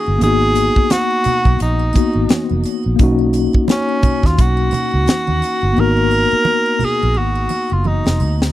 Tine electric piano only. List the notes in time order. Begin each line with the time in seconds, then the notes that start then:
Already playing: A#3 C#4 D#4 F#4
0.18 A#3 B3
0.23 D#4 F#4
1.94 A#3 B3 D#4 F#4
2.96 A#3 C#4
3.01 D#4 F#4
5.73 A#3 B3
5.78 D#4 F#4